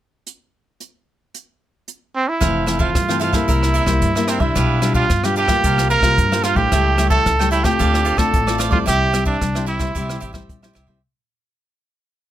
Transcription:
0.27 closed hi-hat
0.80 closed hi-hat
1.34 closed hi-hat
1.88 closed hi-hat
2.16 trumpet C4
2.28 trumpet E4
2.40 upright bass F1, nylon-string guitar F2 E3 A3 C4, cavaquinho E4 A4 C5 F5, kick, cross-stick, closed hi-hat
2.66 nylon-string guitar E3 A3 C4, cavaquinho E4 A4 C5 F5, cross-stick, closed hi-hat
2.79 cavaquinho E4 A4 C5 F5, trumpet F4, kick
2.95 upright bass G2, nylon-string guitar C3, kick, cross-stick, closed hi-hat
3.09 nylon-string guitar E3 A3 C4, cavaquinho A4 C5 F5, cross-stick
3.20 cavaquinho E4 A4 C5 F5, trumpet F4, closed hi-hat
3.32 nylon-string guitar G3 A#3 E4, trumpet E4, cavaquinho A4 C5 F5, kick, cross-stick, closed hi-hat
3.48 upright bass C2, nylon-string guitar C3, cavaquinho E4 A#4 C5 E5, kick, closed hi-hat
3.63 cross-stick
3.74 cavaquinho E4 A#4 C5 E5, closed hi-hat
3.85 upright bass C2, nylon-string guitar G3 A#3 E4, cavaquinho A#4 C5 E5, kick, cross-stick
4.02 nylon-string guitar G2, upright bass G2, kick, closed hi-hat
4.15 nylon-string guitar G3 A#3 E4, cavaquinho A#4 C5 E5, cross-stick
4.28 trumpet C4, cavaquinho E4 A#4 C5 E5, cross-stick, closed hi-hat
4.39 upright bass C2, nylon-string guitar G3 D4, trumpet E4, cavaquinho A#4 C5 E5, kick
4.55 upright bass B1, nylon-string guitar B2, cavaquinho D4 G4 B4 F5, kick, cross-stick, closed hi-hat
4.82 nylon-string guitar G3 D4 F4, cavaquinho D4 G4 B4 F5, cross-stick, closed hi-hat
4.94 cavaquinho D4 G4 B4 F5, trumpet F4, kick
5.10 upright bass G2, nylon-string guitar B2, kick, cross-stick, closed hi-hat
5.24 nylon-string guitar G3 D4 F4, trumpet G4, cavaquinho G4 B4 F5, cross-stick, closed hi-hat
5.36 cavaquinho D4 G4 B4 F5, trumpet G4, closed hi-hat
5.48 nylon-string guitar G3 A#3 F4, cavaquinho G4 B4 F5, kick, cross-stick, closed hi-hat
5.64 upright bass C2, nylon-string guitar C3, cavaquinho F4 A#4 C5 F5, kick, closed hi-hat
5.78 cross-stick, closed hi-hat
5.90 cavaquinho F4 A#4 C5 F5, trumpet A#4, closed hi-hat
6.01 upright bass C2, nylon-string guitar G3 A#3 F4, cavaquinho C5 F5, kick, cross-stick
6.05 cavaquinho A#4
6.18 upright bass G2, nylon-string guitar G2, kick, closed hi-hat
6.32 nylon-string guitar G3 A#3 F4, cavaquinho A#4 C5 F5, cross-stick
6.43 cavaquinho F4 A#4 C5 F5, trumpet F4, cross-stick, closed hi-hat
6.54 upright bass A#1, nylon-string guitar G3 A3 E4, trumpet G4, cavaquinho A#4 C5 F5, kick
6.72 upright bass C#2, nylon-string guitar C#3, cavaquinho E4 A4 C#5 G5, kick, cross-stick, closed hi-hat
6.98 nylon-string guitar G3 A3 E4, cavaquinho E4 A4 C#5 G5, cross-stick, closed hi-hat
7.10 cavaquinho E4 A4 C#5 G5, trumpet A4, kick
7.26 upright bass C#2, nylon-string guitar C#3, kick, cross-stick, closed hi-hat
7.39 nylon-string guitar G3 A3 E4, cavaquinho A4 C#5 G5, cross-stick
7.51 cavaquinho E4 A4 C#5 G5, trumpet E4, closed hi-hat
7.64 nylon-string guitar A3 C4 F4, trumpet G4, cavaquinho A4 C#5 G5, kick, cross-stick, closed hi-hat
7.79 upright bass D2, nylon-string guitar D3, cavaquinho F4 A4 C5 D5, kick, closed hi-hat
7.94 cross-stick
8.05 cavaquinho F4 A4 C5 D5, closed hi-hat
8.16 upright bass D2, nylon-string guitar A3 C4 F4, trumpet A4, cavaquinho A4 C5 D5, kick, cross-stick
8.34 upright bass A1, nylon-string guitar A2, kick, closed hi-hat
8.47 nylon-string guitar A3 C4 F4, cavaquinho A4 C5 D5, cross-stick
8.58 cavaquinho F4 A4 C5 D5, cross-stick, closed hi-hat
8.70 upright bass D2, nylon-string guitar G3 C4 E4, trumpet F4, cavaquinho A4 C5 D5, kick
8.86 upright bass C2, nylon-string guitar C3, cavaquinho E4 G4 C5 E5, trumpet G4, kick, cross-stick, closed hi-hat
9.12 nylon-string guitar G3 C4 E4, cavaquinho E4 G4 C5 E5, cross-stick, closed hi-hat
9.25 trumpet D4, cavaquinho E4 G4 C5 E5, kick
9.41 upright bass C2, nylon-string guitar G3, kick, cross-stick, closed hi-hat
9.55 nylon-string guitar G3 C4 E4, cavaquinho G4 C5 E5, cross-stick, closed hi-hat
9.66 cavaquinho E4 G4 C5 E5, trumpet E4, closed hi-hat
9.79 nylon-string guitar G3 C4 E4, cavaquinho G4 C5 E5, kick, cross-stick, closed hi-hat
9.95 upright bass C2, nylon-string guitar C3 G3 C4 E4, cavaquinho E4 G4 C5 E5, kick, closed hi-hat
10.10 cross-stick, closed hi-hat
10.20 upright bass A1, cavaquinho E4 G4 C5 E5, closed hi-hat
10.33 nylon-string guitar G3 C4 E4, cavaquinho G4 C5 E5, kick, cross-stick
10.49 upright bass A#1, nylon-string guitar G3, kick, closed hi-hat
10.62 nylon-string guitar G3 C4 E4, cavaquinho G4 C5 E5, cross-stick
10.73 upright bass C2, cavaquinho E4 G4 C5 E5, cross-stick, closed hi-hat
10.87 nylon-string guitar G3 C4 E4, cavaquinho G4 C5 E5, kick

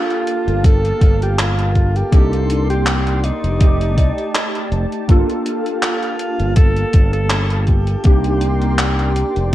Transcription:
Already playing: synth keys A#3 D4 F4 A4, analog synth pad A#3 G4 F5 A5, alto saxophone F4
0.10 closed hi-hat
0.27 closed hi-hat
0.47 fingered electric bass G1, closed hi-hat
0.64 alto saxophone A4, kick, closed hi-hat
0.85 closed hi-hat
1.01 fingered electric bass G1, kick, closed hi-hat
1.22 alto saxophone G4, closed hi-hat
1.39 alto saxophone F4, clap, closed hi-hat
1.59 closed hi-hat
1.75 kick, closed hi-hat
1.96 alto saxophone G4, closed hi-hat
2.11 fingered electric bass C2, synth keys A#3 D4 D#4 G4, alto saxophone A4, analog synth pad D5 C6, kick, closed hi-hat
2.33 closed hi-hat
2.50 closed hi-hat
2.70 alto saxophone G4, closed hi-hat
2.87 clap, closed hi-hat
3.07 closed hi-hat
3.24 alto saxophone D#4, closed hi-hat
3.44 fingered electric bass F1, closed hi-hat
3.60 synth keys A3 D#4 G4 D5, analog synth pad G4 A5, kick, closed hi-hat
3.81 closed hi-hat
3.98 fingered electric bass C2, kick, closed hi-hat
4.18 closed hi-hat
4.35 clap, closed hi-hat
4.55 closed hi-hat
4.72 fingered electric bass F1, closed hi-hat
4.92 closed hi-hat
5.08 fingered electric bass G1, synth keys A#3 D4 F4 A4, analog synth pad A#3 F5, kick, closed hi-hat
5.29 closed hi-hat
5.46 closed hi-hat
5.66 closed hi-hat
5.83 alto saxophone F4, clap, closed hi-hat
6.03 closed hi-hat
6.19 closed hi-hat
6.40 fingered electric bass G1, closed hi-hat
6.56 alto saxophone A4, kick, closed hi-hat
6.77 closed hi-hat
6.93 fingered electric bass G1, kick, closed hi-hat
7.13 alto saxophone A4, closed hi-hat
7.30 clap, closed hi-hat
7.50 closed hi-hat
7.61 alto saxophone A4
7.67 alto saxophone G4, kick, closed hi-hat
7.87 closed hi-hat
8.03 fingered electric bass C2, synth keys A#3 D4 D#4 G4, analog synth pad A#4 D5 C6, kick, closed hi-hat
8.24 closed hi-hat
8.41 closed hi-hat
8.62 closed hi-hat
8.79 clap, closed hi-hat
8.99 closed hi-hat
9.16 closed hi-hat
9.36 fingered electric bass F1, closed hi-hat

